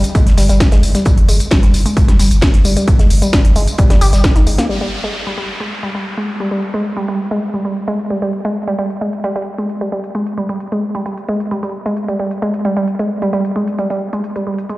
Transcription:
0.04 closed hi-hat, tambourine
0.15 G#3, kick, closed hi-hat, tambourine
0.27 G1, snare, closed hi-hat
0.37 G1 G3, snare, closed hi-hat, open hi-hat, tambourine
0.49 G1 G3, snare, closed hi-hat, tambourine
0.60 kick, snare, closed hi-hat, tambourine
0.71 G1 G#3, snare, closed hi-hat
0.83 G1, snare, open hi-hat, tambourine
0.95 G3, snare, closed hi-hat, tambourine
1.05 G3, kick, closed hi-hat, tambourine
1.18 G1, closed hi-hat
1.29 G1 G#3, closed hi-hat, open hi-hat, tambourine
1.40 closed hi-hat, tambourine
1.51 G3, kick, snare, closed hi-hat, tambourine
1.63 G1 G3, snare, closed hi-hat
1.73 G1, snare, closed hi-hat, open hi-hat, tambourine
1.86 G#3, closed hi-hat, tambourine
1.97 kick, closed hi-hat, tambourine
2.08 G1 G3, snare, closed hi-hat
2.19 G1 G3, snare, closed hi-hat, open hi-hat, tambourine
2.31 G1, closed hi-hat, tambourine
2.41 G#3, kick, snare, closed hi-hat, tambourine
2.53 G1, snare, closed hi-hat
2.64 G1 G3, closed hi-hat, open hi-hat, tambourine
2.77 G3, closed hi-hat, tambourine
2.87 kick, closed hi-hat
2.99 G1 G#3, snare, closed hi-hat
3.10 G1, closed hi-hat, open hi-hat, tambourine
3.22 G3, closed hi-hat, tambourine
3.33 G3, kick, snare, closed hi-hat
3.45 G1, closed hi-hat
3.55 G1 G#3, closed hi-hat, open hi-hat, tambourine
3.67 closed hi-hat, tambourine
3.78 G3, kick, closed hi-hat
3.90 G1 G3, snare, closed hi-hat
4.01 G1 G4, closed hi-hat, open hi-hat, tambourine
4.13 G1 G3, snare, closed hi-hat, tambourine
4.24 kick, snare, closed hi-hat
4.36 G1 D#4, snare, closed hi-hat
4.47 G1 G#3, closed hi-hat, open hi-hat, tambourine
4.58 A#3, snare, closed hi-hat, tambourine
4.69 G3, closed hi-hat, crash, downlifter
4.81 G3, closed hi-hat
5.04 G#3
5.15 closed hi-hat
5.27 G3, closed hi-hat
5.38 G3
5.49 closed hi-hat
5.60 G#3, closed hi-hat
5.72 closed hi-hat
5.83 G3
5.95 G3, closed hi-hat
6.06 closed hi-hat
6.17 G#3, closed hi-hat
6.40 G3, closed hi-hat
6.51 G3, closed hi-hat
6.63 closed hi-hat
6.74 G#3
6.86 closed hi-hat
6.97 G3, closed hi-hat
7.08 G3, closed hi-hat
7.31 G#3, closed hi-hat
7.42 closed hi-hat
7.54 G3, closed hi-hat
7.65 G3
7.77 closed hi-hat
7.88 G#3, closed hi-hat
7.99 closed hi-hat
8.10 G3
8.22 G3, closed hi-hat
8.33 closed hi-hat
8.45 G#3, closed hi-hat
8.68 G3, closed hi-hat
8.79 G3, closed hi-hat
8.90 closed hi-hat
9.01 G#3
9.13 closed hi-hat
9.24 G3, closed hi-hat
9.36 G3, closed hi-hat
9.58 G#3, closed hi-hat
9.70 closed hi-hat
9.81 G3, closed hi-hat
9.92 G3
10.04 closed hi-hat
10.15 G#3, closed hi-hat
10.27 closed hi-hat
10.38 G3
10.49 G3, closed hi-hat
10.60 closed hi-hat
10.72 G#3, closed hi-hat
10.95 G3, closed hi-hat
11.06 G3, closed hi-hat
11.18 closed hi-hat
11.29 G#3
11.40 closed hi-hat
11.51 G3, closed hi-hat
11.63 G3, closed hi-hat
11.86 G#3, closed hi-hat
11.97 closed hi-hat
12.08 G3, closed hi-hat
12.19 G3
12.31 closed hi-hat
12.42 G#3, closed hi-hat
12.54 closed hi-hat
12.65 G3
12.77 G3, closed hi-hat
12.88 closed hi-hat
12.99 G#3, closed hi-hat
13.22 G3, closed hi-hat
13.33 G3, closed hi-hat
13.45 closed hi-hat
13.56 G#3
13.68 closed hi-hat
13.79 G3, closed hi-hat
13.90 G3, closed hi-hat
14.13 G#3, closed hi-hat
14.24 closed hi-hat
14.36 G3, closed hi-hat
14.47 G3
14.58 closed hi-hat
14.69 G#3, closed hi-hat

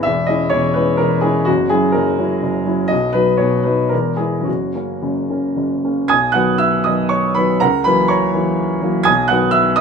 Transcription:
0.03 E1 E2 E5
0.26 G#3 C#4 E4 D#5
0.49 E1 E2 C#5
0.74 G#3 C#4 E4 B4
0.97 E1 E2 A#4
1.21 G#3 C#4 E4 G#4
1.45 F#1 F#2 F#4
1.69 F#3 C#4 E4 G#4
1.92 F#1 F#2 A#4
2.19 F#3 C#4 E4
2.43 F#1 F#2
2.66 F#3 C#4 E4
2.88 B1 B2 D#5
3.13 F#3 B3 D#4 B4
3.37 B1 B2 C#5
3.64 F#3 B3 D#4 B4
3.89 E1 E2 A#4
4.16 G#3 B3 E4 G#4
4.41 F#2
4.45 F#1 F#4
4.75 C#3 A#3 C#4
5.02 F#1 F#2
5.30 C#3 A#3 C#4
5.57 F#1 F#2
5.84 C#3 A#3 C#4
6.08 B1 G#5 D#6 G#6
6.32 D#3 F#3 B3 F#5 F#6
6.58 E5 E6
6.84 D#3 F#3 B3 D#5 D#6
7.09 C#5 C#6
7.35 D#3 F#3 B3 B4 B5
7.60 C#2 A#4 F#5 A#5
7.84 E3 F#3 A#3 B4 B5
8.08 C#5 A#5 C#6
8.34 E3 F#3 A#3
8.82 E3 F#3 A#3
9.03 B1 G#5 D#6 G#6
9.28 D#3 F#3 B3 F#5 F#6
9.51 E5 E6
9.76 D#3 D#5 D#6

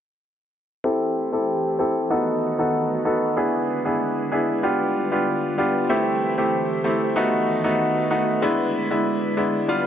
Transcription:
0.84 E3 A3 C4 E4 G4 A4 C5
1.33 C4 E4 G4 A4
1.79 C4 E4 G4 A4
2.10 D#3 A3 B3 D#4 F#4 A4 B4
2.59 B3 D#4 F#4 A4
3.05 B3 D#4 F#4 A4
3.37 D3 G#3 B3 D4 E4 G#4
3.85 B3 D4 E4 G#4
4.32 B3 D4 E4 G#4
4.63 G3 B3 D4 F4 G4
5.11 B3 D4 F4 G4
5.58 B3 D4 F4 G4
5.89 E3 A3 C4 E4 G4 C5
6.38 A3 C4 E4 G4
6.84 A3 C4 E4 G4
7.16 D#3 A3 B3 D#4 F#4 B4
7.64 A3 B3 D#4 F#4
8.10 A3 B3 D#4 F#4
8.42 D3 G#3 B3 D4 E4
8.90 G#3 B3 D4 E4
9.37 G#3 B3 D4 E4
9.68 G3 B3 D4 F4

